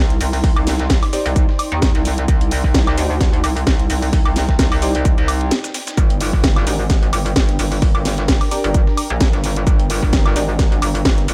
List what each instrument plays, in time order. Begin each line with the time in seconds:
Already playing: wobble bass C2, ambient pad D#4 D5 G5 C6
0.10 closed hi-hat
0.21 wobble bass C2, open hi-hat, shaker
0.33 open hi-hat
0.44 kick, closed hi-hat, open hi-hat
0.56 wobble bass C2, closed hi-hat, high woodblock
0.67 snare, open hi-hat, shaker
0.79 snare, closed hi-hat
0.90 kick, snare, closed hi-hat, shaker
1.03 snare, open hi-hat, high woodblock
1.13 synth stab D#4 G4 C5 D5, open hi-hat, shaker
1.26 wobble bass C2, closed hi-hat
1.36 kick, closed hi-hat, shaker
1.49 snare
1.59 open hi-hat, high woodblock, shaker
1.72 wobble bass D#2, closed hi-hat
1.82 kick, snare, closed hi-hat, shaker
1.95 wobble bass C2, snare, closed hi-hat
2.05 open hi-hat, shaker
2.18 closed hi-hat
2.28 wobble bass C2, kick, closed hi-hat, shaker
2.41 closed hi-hat
2.51 open hi-hat, shaker
2.64 wobble bass C2, kick, snare
2.74 kick, snare, closed hi-hat, shaker
2.87 snare, closed hi-hat, high woodblock
2.97 wobble bass D2, synth stab D#4 G4 C5 D5, open hi-hat, shaker
3.21 kick, snare, closed hi-hat, shaker
3.33 closed hi-hat
3.44 wobble bass C2, open hi-hat, high woodblock, shaker
3.57 closed hi-hat
3.67 wobble bass C2, kick, snare, closed hi-hat, shaker
3.79 closed hi-hat
3.90 wobble bass C2, open hi-hat, shaker
4.02 open hi-hat
4.13 kick, closed hi-hat, open hi-hat
4.26 wobble bass C2, closed hi-hat, high woodblock
4.36 snare, open hi-hat, shaker
4.49 kick, snare, closed hi-hat
4.59 kick, snare, closed hi-hat, shaker
4.72 wobble bass C2, snare, open hi-hat, high woodblock
4.82 synth stab D#4 G4 C5 D5, open hi-hat, shaker
4.95 closed hi-hat
5.05 wobble bass C2, kick, closed hi-hat, shaker
5.18 wobble bass C2, snare, closed hi-hat
5.28 open hi-hat, high woodblock, shaker
5.41 closed hi-hat
5.51 snare, closed hi-hat, shaker
5.64 snare, closed hi-hat, shaker
5.74 snare, open hi-hat, shaker
5.87 snare, closed hi-hat, shaker
5.97 wobble bass G1, ambient pad D4, kick, closed hi-hat, shaker
6.10 closed hi-hat
6.21 open hi-hat, shaker
6.33 wobble bass G1, ambient pad A#4, kick, snare
6.44 kick, snare, closed hi-hat, shaker
6.56 snare, closed hi-hat, high woodblock
6.67 wobble bass G#1, synth stab D4 G4 A#4 D5, open hi-hat, shaker
6.74 ambient pad A#5
6.90 kick, snare, closed hi-hat, shaker
7.03 closed hi-hat
7.13 wobble bass G1, open hi-hat, high woodblock, shaker
7.26 closed hi-hat
7.36 wobble bass G1, kick, snare, closed hi-hat, shaker
7.49 closed hi-hat
7.59 wobble bass G1, open hi-hat, shaker
7.72 open hi-hat
7.82 kick, closed hi-hat, open hi-hat
7.95 wobble bass G1, closed hi-hat, high woodblock
8.05 snare, open hi-hat, shaker
8.18 snare, closed hi-hat
8.28 kick, snare, closed hi-hat, shaker
8.41 snare, open hi-hat, high woodblock
8.51 synth stab D4 G4 A#4 D5, open hi-hat, shaker
8.64 wobble bass G1, closed hi-hat
8.74 kick, closed hi-hat, shaker
8.87 snare
8.97 open hi-hat, high woodblock, shaker
9.10 wobble bass A#1, closed hi-hat
9.21 kick, snare, closed hi-hat, shaker
9.33 wobble bass G1, snare, closed hi-hat
9.44 open hi-hat, shaker
9.56 closed hi-hat
9.67 wobble bass G1, kick, closed hi-hat, shaker
9.80 closed hi-hat
9.90 open hi-hat, shaker
10.03 wobble bass G1, kick, snare
10.13 kick, snare, closed hi-hat, shaker
10.26 snare, closed hi-hat, high woodblock
10.36 wobble bass G#1, synth stab D4 G4 A#4 D5, open hi-hat, shaker
10.59 kick, snare, closed hi-hat, shaker
10.72 closed hi-hat
10.82 wobble bass G1, open hi-hat, high woodblock, shaker
10.95 closed hi-hat
11.05 wobble bass G1, kick, snare, closed hi-hat, shaker
11.18 closed hi-hat
11.28 wobble bass G1, open hi-hat, shaker